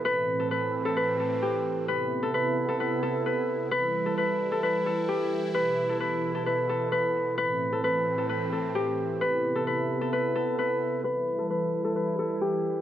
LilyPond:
<<
  \new Staff \with { instrumentName = "Harp" } { \time 4/4 \key e \minor \tempo 4 = 131 b'8. a'16 b'8. a'16 b'8 a'8 g'4 | b'8. a'16 b'8. a'16 b'8 a'8 b'4 | b'8. a'16 b'8. a'16 b'8 a'8 g'4 | b'8. a'16 b'8. a'16 b'8 a'8 b'4 |
b'8. a'16 b'8. a'16 b'8 a'8 g'4 | b'8. a'16 b'8. a'16 b'8 a'8 b'4 | b'8. a'16 b'8. a'16 b'8 a'8 g'4 | }
  \new Staff \with { instrumentName = "Analog synth pad" } { \clef bass \time 4/4 \key e \minor << { c'1 | e'1 | e'1~ | e'1 |
c'1 | e'1 | e'1 | } \\ { <a, e>1 | <c b>1 | <e g>1 | b,1 |
<a, e>1 | <c b>1 | <e g>1 | } >> }
>>